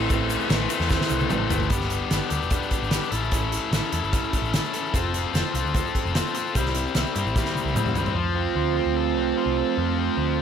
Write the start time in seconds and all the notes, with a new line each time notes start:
Already playing: A1 E4 B4
0.09 A2 E3 A3 C4 E4 B4, kick, ride, shaker
0.30 ride, shaker
0.40 shaker
0.49 A1 A2 E3 A3 C4 E4 B4, snare, ride, shaker
0.69 A2 E3 A3 C4 E4 B4, ride, shaker
0.79 E2, snare, shaker
0.90 A2 E3 A3 C4 E4 B4, kick, snare, shaker
1.01 snare
1.09 C2, shaker
1.19 high tom, shaker
1.29 A1 A2 E3 A3 C4 E4 B4, mid tom, shaker
1.49 G1 A2 E3 A3 C4 E4 B4, floor tom, shaker
1.60 floor tom, shaker
1.70 G1 G2 D3 G3 B3 D4 G4, kick, closed hi-hat, shaker
1.80 snare
1.90 G3 B3 D4, closed hi-hat, shaker
2.10 G1 D3 G3 B3 D4 G4, snare, closed hi-hat, shaker
2.30 D2 D4 G4, closed hi-hat, shaker
2.42 E1, shaker
2.50 G2 D3 G3 B3 D4 G4, kick, closed hi-hat, shaker
2.63 shaker
2.71 G3 B3 D4, kick, closed hi-hat, shaker
2.82 G#1, shaker
2.91 D3 G3 B3 D4 G4, snare, closed hi-hat, shaker
3.03 shaker
3.11 A1 A2 E3 A3 C#4 E4 A4, closed hi-hat, shaker
3.24 shaker
3.31 A2 E3 A3 C#4 E4 A4, kick, closed hi-hat, shaker
3.51 A3 C#4 E4, closed hi-hat, shaker
3.71 A1 E3 A3 C#4 E4, snare, closed hi-hat, shaker
3.76 A4
3.92 E2 E4 A4, closed hi-hat, shaker
4.03 G1, shaker
4.12 A2 E3 A3 C#4 E4 A4, kick, closed hi-hat, shaker
4.24 shaker
4.32 A3 C#4 E4, kick, closed hi-hat, shaker
4.42 A1, shaker
4.53 E3 A3 C#4 E4 A4, snare, closed hi-hat, shaker
4.64 shaker
4.73 A3 C#4 E4 A4, closed hi-hat, shaker
4.86 shaker
4.93 F1 F3 A3 C4 F4 A4, kick, closed hi-hat, shaker
5.13 A3 C4 F4, closed hi-hat, shaker
5.33 F1 F3 A3 C4 F4 A4, snare, closed hi-hat, shaker
5.53 C2 F4 A4, closed hi-hat, shaker
5.65 D2, shaker
5.73 F3 A3 C4 F4 A4, kick, closed hi-hat, shaker
5.86 shaker
5.94 A3 C4 F4, kick, closed hi-hat
6.05 F1, shaker
6.14 F3 A3 C4 F4 A4, snare, closed hi-hat, shaker
6.27 shaker
6.35 A3 C4 F4 A4, closed hi-hat, shaker
6.46 shaker
6.54 C2 C3 E3 G3 C4 E4, kick, closed hi-hat, shaker
6.66 snare
6.74 G3 C4 E4, closed hi-hat, shaker
6.87 shaker
6.94 C2 E3 G3 C4 E4, snare, closed hi-hat, shaker
7.06 shaker
7.15 G2 C4 E4, closed hi-hat, shaker
7.25 A1, shaker
7.34 C3 E3 G3 C4 E4, kick, snare, shaker
7.45 snare, shaker
7.55 G3 C4 E4, high tom, shaker
7.65 C2, high tom, shaker
7.74 A2 E3 G3 C4 E4, mid tom, shaker
7.86 mid tom, shaker
7.93 G2 G3 C4 E4, floor tom, shaker
8.06 floor tom
8.14 F2 F3 A3 C4 F4
8.35 C4
8.55 D2 F3
8.76 C4
8.86 D2
8.97 A4
9.16 C2 C4
9.37 F4
9.46 C2
9.58 A4
9.77 F2 F3
9.98 C4
10.17 D2 F3